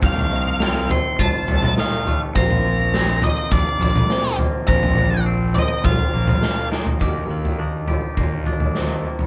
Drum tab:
SD |----o-------o---|----o-------o---|------------o-o-|------------o---|
T2 |-----------o----|-----------o----|--------o--o----|----------------|
FT |oo----o-o-oo--o-|oo----o-o-oo--o-|ooo---o-oo-o---o|o--o--o-o-oo---o|
BD |o-------o-------|o-------o-------|o-------o-------|o-------o-------|